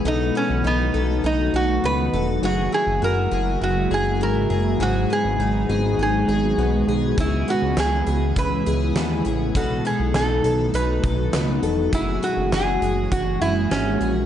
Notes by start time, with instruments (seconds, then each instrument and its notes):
Already playing: twelve-string acoustic guitar B3 E4, ambient pad B3
0.04 analog synth bass B1, twelve-string acoustic guitar B2 A4, ambient pad D#3 F#3 A3 F#4, resonator guitar played with a steel bar D#4
0.35 twelve-string acoustic guitar B3, resonator guitar played with a steel bar C#4
0.50 analog synth bass B1
0.64 analog synth bass B1, resonator guitar played with a steel bar B3, twelve-string acoustic guitar D#4
0.94 analog synth bass B1, twelve-string acoustic guitar A4
1.24 analog synth bass B1, twelve-string acoustic guitar D#4, resonator guitar played with a steel bar D#4
1.53 analog synth bass B1, resonator guitar played with a steel bar F#4, twelve-string acoustic guitar A4
1.83 analog synth bass C#2, twelve-string acoustic guitar B3, resonator guitar played with a steel bar B4
2.13 analog synth bass E1, twelve-string acoustic guitar A4
2.42 analog synth bass F#1, ambient pad C#3 G#3 A#3 E4, twelve-string acoustic guitar F#3 G#4, resonator guitar played with a steel bar F#4
2.72 twelve-string acoustic guitar E4, resonator guitar played with a steel bar G#4
2.87 analog synth bass F#1
3.02 analog synth bass F#1, twelve-string acoustic guitar F#4, resonator guitar played with a steel bar A#4
3.31 analog synth bass F#1, twelve-string acoustic guitar G#4
3.61 analog synth bass F#1, twelve-string acoustic guitar F#4, resonator guitar played with a steel bar F#4
3.91 analog synth bass F#1, twelve-string acoustic guitar G#4, resonator guitar played with a steel bar G#4
4.21 analog synth bass G#1, twelve-string acoustic guitar E4, resonator guitar played with a steel bar A#4
4.50 analog synth bass F#1, twelve-string acoustic guitar G#4
4.79 analog synth bass G#1, twelve-string acoustic guitar G#2 G#4, ambient pad D#3 B3 F#4, resonator guitar played with a steel bar F#4
5.10 twelve-string acoustic guitar B3, resonator guitar played with a steel bar G#4
5.24 analog synth bass G#1
5.39 analog synth bass G#1, twelve-string acoustic guitar D#4
5.69 analog synth bass G#1, twelve-string acoustic guitar G#4
5.98 analog synth bass G#1, twelve-string acoustic guitar D#4
6.03 resonator guitar played with a steel bar G#4
6.28 analog synth bass G#1, twelve-string acoustic guitar G#4
6.57 analog synth bass B1, twelve-string acoustic guitar B3
6.87 analog synth bass B1, twelve-string acoustic guitar G#4
7.18 analog synth bass C#2, twelve-string acoustic guitar C#3 G#4, ambient pad C#3 E3 E4, resonator guitar played with a steel bar E4, kick, closed hi-hat
7.48 twelve-string acoustic guitar B3, resonator guitar played with a steel bar F#4, closed hi-hat
7.62 analog synth bass C#2
7.77 analog synth bass C#2, twelve-string acoustic guitar E4, resonator guitar played with a steel bar G#4, snare, closed hi-hat
8.07 analog synth bass C#2, twelve-string acoustic guitar G#4, closed hi-hat
8.36 analog synth bass C#2, twelve-string acoustic guitar E4, resonator guitar played with a steel bar B4, kick, closed hi-hat
8.66 analog synth bass C#2, twelve-string acoustic guitar G#4, closed hi-hat
8.96 analog synth bass D#2, twelve-string acoustic guitar B3, snare, closed hi-hat
9.25 analog synth bass A1, twelve-string acoustic guitar G#4, closed hi-hat
9.55 analog synth bass B1, twelve-string acoustic guitar B2 A4, ambient pad D#3 F#3 A3 F#4, resonator guitar played with a steel bar F#4, kick, closed hi-hat
9.85 twelve-string acoustic guitar B3, resonator guitar played with a steel bar G#4, closed hi-hat
10.00 analog synth bass B1
10.14 analog synth bass B1, twelve-string acoustic guitar D#4, resonator guitar played with a steel bar A4, snare, closed hi-hat
10.44 analog synth bass B1, twelve-string acoustic guitar A4, closed hi-hat
10.74 analog synth bass B1, twelve-string acoustic guitar D#4, resonator guitar played with a steel bar B4, closed hi-hat
11.03 analog synth bass B1, twelve-string acoustic guitar A4, kick, closed hi-hat
11.33 analog synth bass C#2, twelve-string acoustic guitar B3, snare, closed hi-hat
11.63 analog synth bass E1, twelve-string acoustic guitar A4, closed hi-hat
11.93 analog synth bass F#1, ambient pad E3 G#3 A#3 C#4, twelve-string acoustic guitar F#3 G#4, resonator guitar played with a steel bar E4, kick, closed hi-hat
12.23 twelve-string acoustic guitar E4, resonator guitar played with a steel bar F#4, closed hi-hat
12.37 analog synth bass F#1
12.51 analog synth bass F#1, twelve-string acoustic guitar F#4, resonator guitar played with a steel bar G#4, snare, closed hi-hat
12.81 analog synth bass F#1, twelve-string acoustic guitar G#4, closed hi-hat
13.12 analog synth bass F#1, twelve-string acoustic guitar F#4, resonator guitar played with a steel bar F#4, kick, closed hi-hat
13.41 analog synth bass F#1, resonator guitar played with a steel bar E4, twelve-string acoustic guitar G#4, closed hi-hat
13.71 analog synth bass G#1, resonator guitar played with a steel bar C#4, twelve-string acoustic guitar E4, snare, closed hi-hat
14.00 analog synth bass A#1, twelve-string acoustic guitar G#4, closed hi-hat